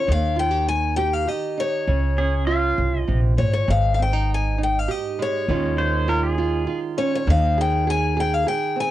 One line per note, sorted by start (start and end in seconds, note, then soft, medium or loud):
0.00 0.11 C#5 medium
0.07 1.25 D#2 loud
0.07 1.88 D#3 medium
0.12 0.39 F5 loud
0.36 0.51 F4 medium
0.36 0.68 G5 medium
0.51 0.68 G4 medium
0.68 0.96 G#5 loud
0.96 1.26 G4 medium
0.96 1.13 G5 medium
1.13 1.28 F5 medium
1.27 1.85 G4 medium
1.27 1.59 D#5 medium
1.58 1.85 D#4 medium
1.58 3.37 C#5 medium
1.88 2.75 C#2 medium
1.88 3.07 C#3 medium
2.18 2.79 C#4 medium
2.18 2.46 G#4 medium
2.47 3.69 F4 medium
2.47 3.00 F5 loud
2.78 3.06 C2 medium
3.00 3.19 D#5 loud
3.08 3.36 A#1 medium
3.08 3.37 C3 medium
3.37 3.66 G#1 medium
3.37 3.69 A#2 medium
3.37 3.52 C#5 medium
3.53 3.68 C#5 medium
3.68 4.85 G#1 medium
3.68 5.45 G#2 medium
3.68 3.93 F5 medium
3.94 4.01 F5 medium
3.99 4.13 C4 medium
3.99 4.29 G5 medium
4.13 4.57 D#4 soft
4.34 4.60 G#5 medium
4.58 5.50 D#4 medium
4.63 4.79 G5 medium
4.79 4.91 F5 medium
4.88 5.45 G4 medium
4.88 5.20 D#5 medium
5.19 5.49 G#3 medium
5.19 6.96 C#5 medium
5.48 6.64 D#2 medium
5.48 7.26 D#3 medium
5.48 8.91 G#3 medium
5.48 6.96 C#4 medium
5.48 5.77 F4 medium
5.78 6.07 F4 medium
5.78 6.10 C5 medium
6.08 6.37 F4 medium
6.08 6.25 A#4 medium
6.23 6.79 G#4 medium
6.38 6.66 F4 medium
6.67 7.28 F4 medium
6.98 7.24 C#4 medium
6.98 7.14 C#5 medium
7.15 7.30 C#5 medium
7.27 8.43 D#2 loud
7.27 8.91 D#3 medium
7.27 7.57 F5 medium
7.58 7.87 G#4 medium
7.58 7.90 G5 medium
7.87 8.16 G#4 medium
7.87 8.20 G#5 loud
8.17 8.46 G#4 medium
8.17 8.34 G5 medium
8.34 8.48 F5 medium
8.47 8.91 G#4 medium
8.47 8.79 G5 medium
8.76 8.91 C4 medium
8.80 8.91 G#5 loud